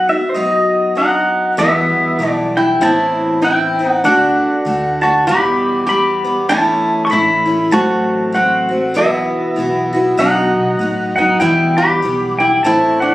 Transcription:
0.09 steel-string acoustic guitar B3 D#4 F#4, pedal steel guitar E5
0.29 pedal steel guitar C5
0.34 steel-string acoustic guitar B2 F#3 B3 D#4 F#4, pedal steel guitar D#5
0.95 steel-string acoustic guitar F#3 B3 D#4 F#4, pedal steel guitar F#5
1.57 steel-string acoustic guitar E2 B2 E3 G3 B3 E4, fingered electric bass E2, pedal steel guitar E5
2.19 fingered electric bass B1, steel-string acoustic guitar E3 G3 B3 E4
2.25 resonator guitar played with a steel bar A3
2.30 pedal steel guitar D5
2.57 resonator guitar played with a steel bar E4, pedal steel guitar G5
2.81 fingered electric bass A1, steel-string acoustic guitar A2 E3 B3 C4 E4, pedal steel guitar A5
3.42 steel-string acoustic guitar E3 B3 C4 E4, pedal steel guitar G5
3.79 steel-string acoustic guitar B3 C4 E4
3.83 resonator guitar played with a steel bar D#4
3.89 pedal steel guitar F#5
4.04 fingered electric bass D2, steel-string acoustic guitar D3 A3 D4 F#4, pedal steel guitar F#5
4.65 fingered electric bass D2, steel-string acoustic guitar D3 A3 D4 F#4
5.01 steel-string acoustic guitar A3 D4 F#4, pedal steel guitar A5
5.27 steel-string acoustic guitar E2 B2 E3 G3 B3, fingered electric bass E2, resonator guitar played with a steel bar G4, pedal steel guitar B5
5.87 steel-string acoustic guitar E3 G3 B3, resonator guitar played with a steel bar G4, pedal steel guitar B5
6.24 steel-string acoustic guitar E3 G3 B3
6.49 fingered electric bass A1, steel-string acoustic guitar A2 E3 A3 C#4 E4, pedal steel guitar A5
7.05 resonator guitar played with a steel bar A4, pedal steel guitar C#6
7.10 fingered electric bass A1, steel-string acoustic guitar E3 A3 C#4 E4, pedal steel guitar B5
7.45 steel-string acoustic guitar A3 C#4 E4
7.71 fingered electric bass A1, steel-string acoustic guitar A2 F#3 A3 C4 F#4, pedal steel guitar A5
8.32 steel-string acoustic guitar F#3 A3 C4 F#4, pedal steel guitar F#5
8.69 steel-string acoustic guitar A3 C4 F#4
8.94 fingered electric bass B1, steel-string acoustic guitar B2 E3 B3 E4 F#4, pedal steel guitar E5
9.56 fingered electric bass B1, steel-string acoustic guitar E3 B3 E4 F#4
9.93 steel-string acoustic guitar B3 E4 F#4
10.17 fingered electric bass B1, steel-string acoustic guitar B2 F#3 B3 D#4 F#4, pedal steel guitar F#5
10.54 fingered electric bass B2
10.79 fingered electric bass A2, steel-string acoustic guitar F#3 B3 D#4 F#4
11.16 fingered electric bass F#2, steel-string acoustic guitar B3 D#4 F#4, pedal steel guitar F#5
11.40 steel-string acoustic guitar E2 B2 E3 G3 B3, fingered electric bass E2, resonator guitar played with a steel bar E4, pedal steel guitar G5
11.77 resonator guitar played with a steel bar G4, pedal steel guitar B5
12.02 fingered electric bass B1, steel-string acoustic guitar E3 G3 B3
12.39 resonator guitar played with a steel bar E4, pedal steel guitar G5
12.63 fingered electric bass A1, steel-string acoustic guitar A2 E3 A3 C4 E4, pedal steel guitar A5
13.00 resonator guitar played with a steel bar D4, pedal steel guitar F#5

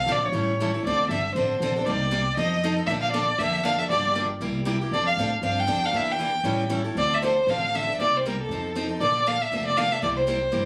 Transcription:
Already playing: violin F5
0.06 upright bass A#1, steel-string acoustic guitar D3 F3 C4 D4 A4
0.12 violin D5
0.25 violin C#5
0.32 upright bass A1, steel-string acoustic guitar E3 G3 C#4 E4 A4
0.60 steel-string acoustic guitar E3 G3 C#4 E4 A4
0.74 steel-string acoustic guitar C#4 E4 A4
0.83 upright bass D2, steel-string acoustic guitar D3 F3 C4, violin D5
0.87 steel-string acoustic guitar D4 A4
1.09 upright bass G1, steel-string acoustic guitar D3 F3 C4 D4 A4, violin E5
1.35 upright bass A1, steel-string acoustic guitar D3 F3 C4 D4 A4, violin C5
1.60 upright bass A#1, steel-string acoustic guitar D3 F3 C4 D4 A4
1.76 steel-string acoustic guitar C4 D4 A4
1.86 upright bass C2, steel-string acoustic guitar C3 G3 A#3 D#4 G4, violin D5
2.11 steel-string acoustic guitar C3 G3 A#3 D#4 G4
2.37 upright bass F2, steel-string acoustic guitar F3 C4 D#4 A4, violin D#5
2.63 steel-string acoustic guitar F3 C4 D#4 A4
2.77 steel-string acoustic guitar C4 D#4 A4
2.87 upright bass A#1, steel-string acoustic guitar D3 F3 A#3 A4, violin E5
2.91 steel-string acoustic guitar D4
3.02 violin F5
3.12 steel-string acoustic guitar D3 F3 A#3 D4 A4, violin D5
3.39 upright bass F2, steel-string acoustic guitar D3 F3 A#3 D4 A4, violin E5
3.64 steel-string acoustic guitar D3 F3 A#3 D4 A4, violin F5
3.79 steel-string acoustic guitar A#3 D4 A4, violin E5
3.90 upright bass G1, steel-string acoustic guitar D3 F3 A#3 D4 G4, violin D5
4.15 steel-string acoustic guitar D3 F3 A#3 D4 G4
4.40 upright bass C2, steel-string acoustic guitar C3 G3 A#3 E4 G4
4.65 steel-string acoustic guitar C3 G3 A#3 E4 G4
4.81 steel-string acoustic guitar A#3 E4 G4
4.91 upright bass F2, steel-string acoustic guitar F3 C4 D4 A4, violin D5
5.07 violin F5
5.17 upright bass A2, steel-string acoustic guitar F3 C4 D4 A4
5.42 upright bass G2, steel-string acoustic guitar F3 C4 D4 A4, violin F5
5.60 violin G5
5.67 upright bass F2, steel-string acoustic guitar F3 C4 D4 A4
5.83 steel-string acoustic guitar C4 D4 A4, violin F5
5.93 upright bass E2, steel-string acoustic guitar E3 A#3 D4 G4
5.97 violin E5
6.12 violin G5
6.19 steel-string acoustic guitar E3 A#3 D4 G4
6.44 upright bass A1, steel-string acoustic guitar E3 G3 C#4 E4 A4
6.69 steel-string acoustic guitar E3 G3 C#4 E4 A4
6.84 steel-string acoustic guitar C#4 E4 A4
6.95 upright bass D2, steel-string acoustic guitar D3 F3 C4 D4 A4, violin D5
7.14 violin E5
7.22 steel-string acoustic guitar D3 F3 C4 D4 A4, violin C5
7.47 upright bass A1, steel-string acoustic guitar D3 F3 C4 D4 A4, violin F5
7.74 steel-string acoustic guitar D3 F3 C4 D4 A4, violin E5
7.87 steel-string acoustic guitar C4 D4 A4
7.99 upright bass C2, steel-string acoustic guitar C3 G3 A#3 D#4 G4, violin D5
8.17 violin C5
8.26 steel-string acoustic guitar C3 G3 A#3 D#4 G4, violin A#4
8.42 violin A4
8.49 upright bass F2, steel-string acoustic guitar F3 C4 D#4 A4
8.75 steel-string acoustic guitar F3 C4 D#4 A4
8.89 steel-string acoustic guitar C4 D#4 A4
9.00 upright bass A#1, steel-string acoustic guitar D3 F3 A#3 D4 A4, violin D5
9.26 steel-string acoustic guitar D3 F3 A#3 D4 A4, violin F5
9.42 violin E5
9.52 upright bass F1, steel-string acoustic guitar D3 F3 A#3 D4 A4
9.67 violin D5
9.77 steel-string acoustic guitar D3 F3 A#3 D4 A4, violin F5
9.92 steel-string acoustic guitar A#3 D4 A4, violin E5
10.02 upright bass C2, steel-string acoustic guitar C3 G3 A#3 E4 G4, violin D5
10.16 violin C5
10.27 steel-string acoustic guitar C3 G3 A#3 E4 G4
10.52 upright bass G1, steel-string acoustic guitar C3 G3 A#3 E4 G4

